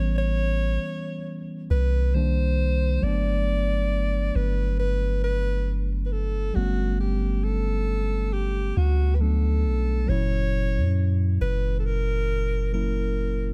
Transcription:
0.00 0.78 A1 loud
0.00 2.09 E3 medium
0.00 2.10 G3 medium
0.00 2.11 B3 medium
0.00 2.15 C#4 medium
0.00 0.17 C#5 loud
0.18 1.41 C#5 loud
1.70 2.99 C2 loud
1.70 2.16 B4 loud
2.14 3.02 D#3 medium
2.14 3.03 G3 medium
2.14 3.03 A#3 medium
2.14 3.03 D4 medium
2.14 3.05 C5 loud
3.01 4.31 G1 loud
3.01 6.50 F#3 medium
3.01 6.51 A3 medium
3.01 6.52 B3 medium
3.01 4.37 D5 loud
3.06 6.53 D4 medium
4.35 6.52 G1 loud
4.35 4.79 B4 loud
4.79 5.20 B4 loud
5.24 5.82 B4 loud
6.05 6.13 B4 medium
6.12 6.57 A4 medium
6.54 8.72 G1 loud
6.54 9.15 G3 medium
6.54 9.16 A3 medium
6.54 9.17 B3 medium
6.54 6.99 F#4 medium
6.59 9.18 C#4 medium
7.00 7.46 G4 medium
7.44 8.34 A4 loud
8.33 8.79 G4 loud
8.77 9.66 D2 loud
8.77 9.16 F#4 medium
9.15 9.22 B4 medium
9.19 10.05 F#3 medium
9.19 10.08 A3 soft
9.19 10.09 B3 soft
9.19 10.09 D4 medium
9.19 10.11 A4 loud
9.65 10.06 B1 medium
10.06 10.78 F#1 loud
10.06 12.69 A#2 medium
10.06 12.68 F#3 medium
10.06 12.70 C#4 medium
10.06 11.15 C#5 loud
10.12 12.71 E4 medium
10.77 11.38 F#2 loud
11.41 13.54 F#1 loud
11.41 11.76 B4 loud
11.79 11.87 A4 medium
11.85 12.73 A#4 loud
12.73 13.54 F#3 medium
12.73 13.54 A#3 soft
12.73 13.54 C#4 soft
12.73 13.54 E4 medium
12.73 13.54 A#4 medium

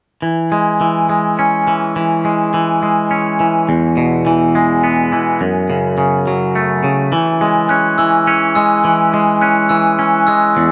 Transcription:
0.22 0.80 E3 soft
0.52 1.09 G#3 soft
0.81 1.67 E3 soft
1.09 2.24 G#3 soft
1.39 2.82 C#4 soft
1.68 1.95 E3 soft
1.96 2.53 E3 soft
2.25 2.82 G#3 soft
2.54 3.39 E3 soft
2.83 4.55 G#3 soft
3.11 3.68 C#4 soft
3.40 3.68 E3 soft
3.69 5.12 E2 soft
3.97 5.40 B2 soft
4.27 5.11 E3 soft
4.55 5.44 G#3 soft
4.83 5.40 B3 soft
5.12 5.41 E3 soft
5.41 6.84 F#2 soft
5.70 5.97 C#3 soft
5.98 6.82 C#3 soft
6.27 7.12 F#3 soft
6.55 7.12 A3 soft
6.84 7.12 C#3 soft
7.12 7.98 E3 soft
7.41 8.56 G#3 soft
7.69 8.26 C#4 soft
7.69 7.98 F#6 soft
7.98 8.84 E3 soft
7.98 8.54 E6 soft
8.27 9.41 C#4 soft
8.55 9.13 G#3 soft
8.55 8.84 E6 soft
8.85 9.69 E3 soft
9.14 10.28 G#3 soft
9.41 9.98 C#4 soft
9.41 9.70 F#6 soft
9.69 10.56 E3 soft
9.69 10.25 E6 soft
9.99 10.56 C#4 soft
10.27 10.72 G#3 soft
10.27 10.56 E6 soft
10.57 10.72 E2 medium

